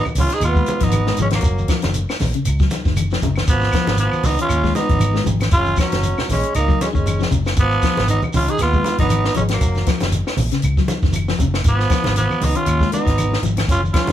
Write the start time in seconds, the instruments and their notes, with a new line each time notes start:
0.05 high conga, low conga, claves, shekere
0.15 fingered electric bass C#2, trombone C#4, open hi-hat, high conga, low conga, shekere
0.20 tenor saxophone F4
0.30 snare, closed hi-hat, shekere
0.34 trombone D#4, tenor saxophone G#4
0.40 fingered electric bass D#2, tenor saxophone F4, closed hi-hat, claves, shekere
0.48 trombone B3
0.56 clean electric guitar G#3, kick, shekere
0.66 closed hi-hat, high conga, shekere
0.80 fingered electric bass G#1, clean electric guitar F3, tenor saxophone D#4, kick, snare, closed hi-hat, shekere
0.86 trombone B3
0.91 closed hi-hat, high conga, claves, shekere
1.07 clean electric guitar G#3, snare, shekere
1.17 fingered electric bass G#1, clean electric guitar F3, closed hi-hat, low conga, shekere
1.21 trombone G#3, tenor saxophone C#4
1.30 snare, closed hi-hat, high conga, claves, shekere
1.35 trombone F#3, tenor saxophone A#3
1.41 fingered electric bass F#1, kick, closed hi-hat, shekere
1.58 high conga, shekere
1.68 clean electric guitar F3, kick, snare, closed hi-hat, claves, shekere
1.82 fingered electric bass F#1, snare, closed hi-hat, high conga, shekere
1.94 closed hi-hat, high conga, shekere
2.09 snare, claves, shekere
2.19 fingered electric bass A#1, snare, open hi-hat, high conga, low conga, shekere
2.34 clean electric guitar C#3, closed hi-hat, shekere
2.45 fingered electric bass C#2, closed hi-hat, claves, shekere
2.59 clean electric guitar F#3, kick, snare, shekere
2.70 snare, closed hi-hat, high conga, shekere
2.85 fingered electric bass F#1, clean electric guitar D#3, kick, snare, shekere
2.97 closed hi-hat, high conga, claves, shekere
3.11 clean electric guitar F3, snare, shekere
3.22 fingered electric bass F#1, clean electric guitar C#3, kick, closed hi-hat, low conga, shekere
3.36 snare, high conga, claves, shekere
3.47 fingered electric bass G#1, trombone F3, tenor saxophone B3, kick, closed hi-hat, shekere
3.61 snare, high conga, shekere
3.72 clean electric guitar F3, kick, snare, closed hi-hat, claves, shekere
3.86 fingered electric bass G#1, snare, high conga, shekere
3.97 trombone F3, tenor saxophone B3, closed hi-hat, shekere
4.12 high conga, claves, shekere
4.23 fingered electric bass C#2, trombone B3, tenor saxophone D#4, snare, open hi-hat, high conga, low conga, shekere
4.38 clean electric guitar D#3, trombone C#4, tenor saxophone F4, closed hi-hat, shekere
4.49 fingered electric bass D#2, closed hi-hat, claves, shekere
4.64 clean electric guitar G#3, kick, snare, shekere
4.75 trombone B3, tenor saxophone D#4, snare, closed hi-hat, high conga, shekere
4.89 fingered electric bass G#1, clean electric guitar F3, kick, closed hi-hat, shekere
4.99 closed hi-hat, high conga, claves, shekere
5.14 clean electric guitar G#3, snare, shekere
5.24 fingered electric bass G#1, clean electric guitar F3, closed hi-hat, low conga, shekere
5.40 snare, closed hi-hat, high conga, claves, shekere
5.51 fingered electric bass F#1, tenor saxophone F4, kick, closed hi-hat, shekere
5.56 trombone C#4
5.66 high conga, shekere
5.76 clean electric guitar F3, tenor saxophone C#4, kick, snare, closed hi-hat, claves, shekere
5.81 trombone F#3
5.91 fingered electric bass F#1, snare, closed hi-hat, high conga, shekere
6.03 closed hi-hat, high conga, shekere
6.18 snare, low conga, claves, shekere
6.29 fingered electric bass A#1, trombone G#3, tenor saxophone C#4, snare, open hi-hat, high conga, low conga, shekere
6.43 closed hi-hat, shekere
6.54 fingered electric bass C#2, trombone A#3, tenor saxophone D#4, closed hi-hat, claves, shekere
6.68 clean electric guitar F#3, kick, shekere
6.81 trombone G#3, tenor saxophone C#4, snare, closed hi-hat, high conga, shekere
6.93 fingered electric bass F#1, clean electric guitar D#3, trombone G#3, tenor saxophone C#4, kick, shekere
7.06 closed hi-hat, high conga, claves, shekere
7.20 clean electric guitar F3, snare, shekere
7.31 fingered electric bass F#1, clean electric guitar C#3, kick, closed hi-hat, low conga, shekere
7.45 snare, claves, shekere
7.57 fingered electric bass G#1, tenor saxophone B3, kick, closed hi-hat, shekere
7.61 trombone F3
7.71 shekere
7.82 clean electric guitar F3, kick, snare, closed hi-hat, claves, shekere
7.96 fingered electric bass G#1, snare, high conga, shekere
8.08 trombone B3, tenor saxophone D#4, closed hi-hat, high conga, shekere
8.22 high conga, low conga, claves, shekere
8.33 fingered electric bass C#2, trombone C#4, tenor saxophone F4, open hi-hat, high conga, low conga, shekere
8.48 clean electric guitar D#3, trombone D#4, tenor saxophone G#4, closed hi-hat, shekere
8.58 fingered electric bass D#2, trombone B3, snare, closed hi-hat, claves, shekere
8.63 tenor saxophone F4
8.73 clean electric guitar G#3, kick, shekere
8.84 snare, closed hi-hat, high conga, shekere
8.98 fingered electric bass G#1, clean electric guitar F3, trombone B3, tenor saxophone D#4, kick, snare, closed hi-hat, shekere
9.09 closed hi-hat, high conga, claves, shekere
9.24 snare, shekere
9.34 fingered electric bass G#1, clean electric guitar F3, trombone G#3, tenor saxophone C#4, closed hi-hat, low conga, shekere
9.48 trombone F#3, snare, closed hi-hat, shekere
9.52 tenor saxophone A#3, claves
9.61 fingered electric bass F#1, kick, closed hi-hat, shekere
9.75 snare, high conga, shekere
9.86 clean electric guitar F3, kick, snare, closed hi-hat, claves, shekere
10.00 fingered electric bass F#1, snare, closed hi-hat, high conga, shekere
10.12 closed hi-hat, high conga, shekere
10.27 snare, claves, shekere
10.37 fingered electric bass A#1, open hi-hat, high conga, low conga, shekere
10.51 clean electric guitar C#3, snare, closed hi-hat, shekere
10.62 fingered electric bass C#2, closed hi-hat, claves, shekere
10.77 clean electric guitar F#3, kick, snare, shekere
10.88 snare, closed hi-hat, high conga, shekere
11.02 fingered electric bass F#1, clean electric guitar D#3, kick, snare, shekere
11.13 closed hi-hat, high conga, claves, shekere
11.28 clean electric guitar F3, snare, shekere
11.39 fingered electric bass F#1, clean electric guitar C#3, kick, closed hi-hat, low conga, shekere
11.54 snare, claves, shekere
11.64 fingered electric bass G#1, trombone F3, kick, closed hi-hat, shekere
11.68 tenor saxophone B3
11.80 snare, shekere
11.90 clean electric guitar F3, kick, snare, closed hi-hat, claves, shekere
12.04 fingered electric bass G#1, snare, high conga, shekere
12.16 trombone F3, tenor saxophone B3, closed hi-hat, high conga, shekere
12.30 high conga, claves, shekere
12.41 fingered electric bass C#2, trombone B3, tenor saxophone D#4, snare, open hi-hat, high conga, low conga, shekere
12.55 clean electric guitar D#3, trombone C#4, tenor saxophone F4, closed hi-hat, shekere
12.66 fingered electric bass D#2, closed hi-hat, claves, shekere
12.81 clean electric guitar G#3, kick, snare, shekere
12.92 trombone B3, tenor saxophone D#4, closed hi-hat, high conga, shekere
13.06 fingered electric bass G#1, muted clean electric guitar stroke, kick, snare, closed hi-hat, shekere
13.18 closed hi-hat, high conga, claves, shekere
13.32 muted clean electric guitar stroke, snare, shekere
13.43 fingered electric bass G#1, clean electric guitar F3, closed hi-hat, low conga, shekere
13.57 snare, closed hi-hat, high conga, claves, shekere
13.68 fingered electric bass F#1, trombone C#4, tenor saxophone F4, kick, closed hi-hat, shekere
13.83 high conga, shekere
13.93 clean electric guitar F3, trombone C#4, tenor saxophone F4, kick, snare, closed hi-hat, claves, shekere
14.07 fingered electric bass F#1, closed hi-hat, high conga